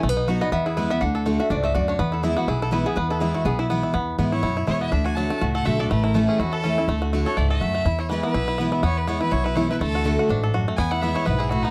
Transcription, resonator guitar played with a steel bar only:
X:1
M:4/4
L:1/8
Q:"Swing" 1/4=246
K:Emix
V:1 name="Resonator guitar played with a steel bar"
z3 ^d e G B e | f3 e d e d c | B A G F G A B G | B A G F G E z2 |
z8 | z8 | z8 | z8 |
z8 | z8 | z8 | z8 |]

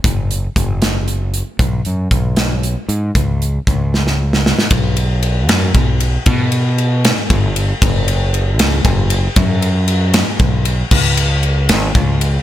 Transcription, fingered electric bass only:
X:1
M:6/8
L:1/8
Q:3/8=77
K:Blyd
V:1 name="Fingered electric bass" clef=bass
F,,,2 F,,,4 | B,,, F,, B,,,3 G,, | C,,2 C,,4 | B,,,3 F,, B,,,2 |
B,,4 =G,,,2 | F,,,3 C,, F,,,2 | F,,4 B,,,2 | C,,3 G,,, C,,2 |]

